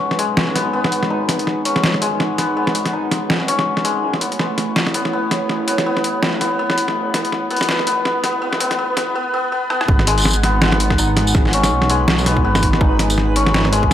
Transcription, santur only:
Already playing: G#3 B3 C#4 D#4
0.19 G#3
0.55 B3
0.73 B3
1.10 D#4
1.65 C#4
2.01 G#3
2.38 B3
2.57 B3
2.93 D#4
3.48 C#4
3.84 G#3
4.21 B3
4.39 B3
4.95 B3
5.13 B3
5.68 B3
5.86 B3
6.41 B3
6.59 B3
7.14 B3
7.51 B3
7.87 B3
8.24 B3
8.42 B3
8.60 B3
8.79 B3
8.97 B3
9.15 B3
9.34 B3
9.52 B3
9.70 B3
10.07 G#3
10.44 B3
10.62 B3
10.99 D#4
11.54 C#4
11.90 G#3
12.27 B3
12.44 B3
12.81 D#4
13.36 C#4
13.72 G#3

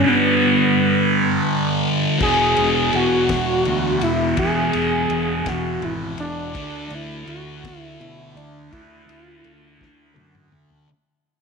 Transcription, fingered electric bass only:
2.20 E1
2.58 E1
2.94 E1
3.66 D2
4.02 E1
4.38 E1
4.74 E1
5.10 E1
5.46 E1
5.82 G#1
6.19 E1
6.55 D2
6.91 D2
7.27 D2
8.00 B2
8.35 D2
8.72 D2
9.09 D2
9.45 D2
9.81 D2
10.17 F#2
10.53 D2

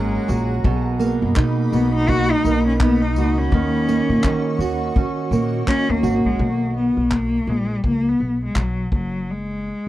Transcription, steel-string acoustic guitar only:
Already playing: F#2 A#3 C#4 F#4
0.28 F#4
0.64 B2
0.99 A#3
1.36 D#4
1.73 F#4
2.09 D#4
2.46 A#3
2.82 D#4
3.18 F#4
3.54 D#3
3.88 A#3
4.25 C#4
4.61 F#4
4.96 C#4
5.33 A#3
5.67 C#4
6.03 F#4

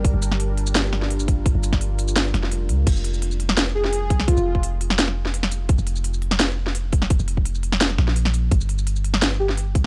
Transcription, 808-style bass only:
Already playing: G1
0.14 G1
1.55 G1
2.34 F1
2.69 C#2
2.87 F1
4.10 C2
4.37 F1
5.79 F1
7.20 F1
7.99 A#1
8.52 G1
9.75 C#2

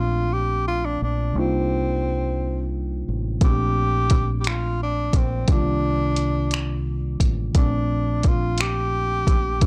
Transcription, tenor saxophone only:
0.00 F4
0.33 G4
0.68 F4
0.85 D4
1.03 D4
1.38 C4
3.44 G4
4.40 G4
4.48 F4
4.83 D4
5.17 C4
5.51 D4
7.57 D4
8.27 F4
8.61 G4

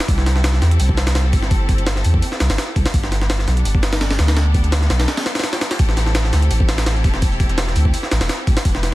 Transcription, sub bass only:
0.08 C2
0.62 E2
0.80 C2
1.33 G1
2.05 E2
2.40 C2
2.50 G1
2.76 C2
2.94 G1
3.47 B1
3.65 G1
4.19 D2
4.90 B1
5.79 A1
6.33 D2
6.51 A1
7.04 E1
7.76 D2
8.12 A1
8.21 E1
8.47 A1
8.65 E1

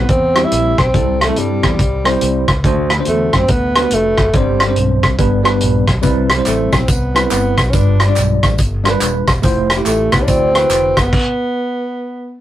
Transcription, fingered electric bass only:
0.09 E2
0.52 A#1
0.78 B1
0.94 C2
1.37 G2
1.64 E2
1.79 C2
2.22 C2
2.49 C#2
2.65 D2
3.08 E2
3.34 F#2
3.49 D2
3.92 F1
4.18 F#1
4.34 G1
4.77 B1
5.03 C2
5.19 G1
5.62 A#1
5.88 B1
6.03 C2
6.46 A1
6.73 B1
6.89 C2
7.32 G1
7.58 B1
7.73 G1
8.17 B1
8.43 A1
8.59 G1
9.02 D#1
9.28 E1
9.44 F1
9.86 A1
10.13 C2
10.28 D2
10.70 F1
10.97 F#1

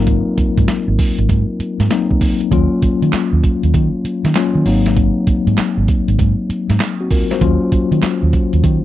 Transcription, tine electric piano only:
Already playing: F#3 A#3 C4 D#4 F4 A#4
1.90 F#3 A#3 C4 D#4
2.51 F#3 A#3 C#4 F4
4.35 F#3 A#3 C#4 F4
4.66 F#3 A#3 C4 D#4
7.01 C4 F#4
7.11 F4 A#4
7.31 F#4 C5
7.41 F#3 A#3 C#4 F4

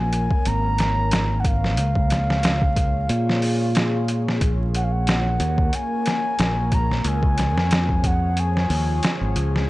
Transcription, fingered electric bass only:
Already playing: A#1
0.46 G#1
1.78 C#2
3.10 A#2
4.41 A#1
5.40 D#2
6.39 A#1
7.05 C#2
7.56 F2
8.70 D#2
9.21 G#1
9.36 C#2

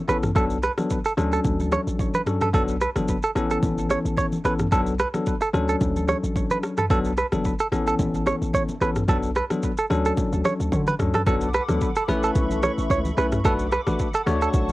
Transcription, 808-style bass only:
0.09 A1
0.36 B1
1.18 D2
1.45 D2
1.87 A1
2.54 B1
2.96 F#1
3.36 A1
3.63 A1
4.05 A1
4.45 A1
4.72 B1
5.54 D2
5.81 D2
6.24 A1
6.90 B1
7.33 F#1
7.72 A1
7.99 A1
8.42 A1
8.81 A1
9.08 B1
9.90 D2
10.33 D2
10.60 D2
10.72 D3
10.99 D2
11.27 B1
11.69 D2
12.09 A1
12.36 B1
12.78 A1
12.90 C#2
13.18 B1
13.45 B1
13.87 A1
14.27 D2
14.54 B1

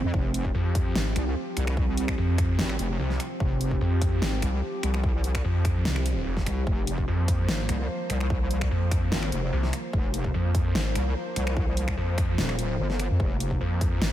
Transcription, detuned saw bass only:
0.55 F2
0.95 G#1
2.18 F2
2.99 C2
3.81 F2
4.22 G#1
5.44 F2
5.85 C2
6.26 F1
7.08 F2
7.48 G#1
8.71 F2
9.53 C2
10.34 F2
10.75 G#1
11.97 F2
13.61 F2
14.02 G#1

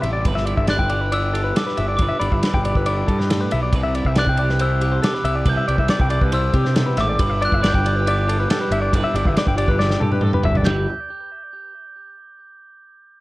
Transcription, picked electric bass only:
0.03 A1
0.25 G1
0.57 G1
0.79 G1
1.78 G1
1.99 G1
2.21 G1
2.32 G1
2.54 G1
2.75 G1
3.08 G2
3.53 B1
3.73 C2
4.05 C2
4.27 C2
5.24 C2
5.46 C2
5.69 C2
5.79 C2
6.00 C2
6.21 C2
6.54 C3
6.97 G#1
7.20 G1
7.53 G1
7.75 G1
8.71 G1
8.93 G1
9.14 G1
9.26 G1
9.47 G1
9.69 G1
10.02 G2
10.45 G1
10.65 G1

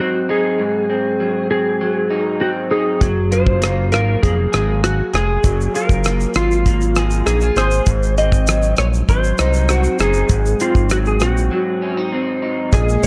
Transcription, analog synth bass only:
3.02 F#1
3.93 G#1
4.23 F1
4.54 G#1
5.14 F1
5.44 F#1
5.90 F#1
6.36 G#1
7.27 A#1
7.56 G#1
7.87 G#1
8.78 A#1
9.09 G#1
9.40 C2
10.00 F#1
10.30 G#1
10.75 G#1
11.21 A#1
12.73 A#1
13.03 A#1

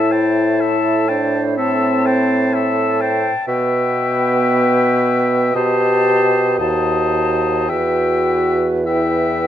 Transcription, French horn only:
Already playing: E4
1.10 D4
1.58 C4
3.48 B3
5.55 G4
6.60 F#4
7.71 F#4
8.86 E4

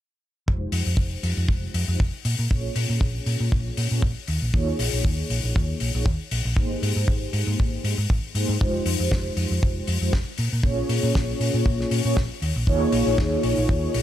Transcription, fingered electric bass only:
0.48 F1
0.72 F2
0.86 F2
0.97 F1
1.23 F2
1.37 F2
1.48 F1
1.74 F2
1.88 F2
2.00 F1
2.25 A#2
2.39 A#2
2.51 A#1
2.76 A#2
2.89 A#2
3.01 A#1
3.26 A#2
3.40 A#2
3.52 A#1
3.77 A#2
3.91 A#2
4.02 A#1
4.28 D#2
4.42 A#1
4.54 D#2
4.79 A#1
4.93 A#1
5.05 D#2
5.30 A#1
5.44 A#1
5.56 D#2
5.81 A#1
5.95 A#1
6.31 A#1
6.45 A#1
6.57 G#1
6.82 G#2
6.96 G#2
7.08 G#1
7.33 G#2
7.47 G#2
7.60 G#1
7.84 G#2
7.98 G#2
8.10 G#1
8.35 G#2
8.49 G#2
8.61 F1
8.86 F2
9.00 F2
9.11 F1
9.36 F2
9.51 F2
9.63 F1
9.88 F2
10.01 F2
10.13 F1
10.39 A#2
10.53 A#2
10.63 A#1
10.89 A#2
11.03 A#2
11.15 A#1
11.40 A#2
11.54 A#2
11.66 A#1
11.91 A#2
12.05 A#2
12.17 A#1
12.42 D#2
12.56 A#1
12.67 D#2
12.92 A#1
13.06 A#1
13.44 A#1
13.57 A#1
13.69 D#2
13.94 A#1

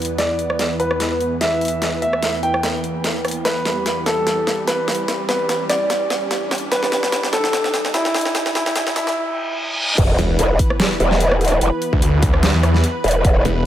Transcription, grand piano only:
Already playing: D5
0.18 D5
0.80 B4
1.41 E5
2.02 E5
2.43 G5
3.45 B4
4.06 A4
4.67 B4
5.29 B4
5.69 D5
6.72 B4
7.33 A4
7.94 E4
8.55 E4
8.96 E4

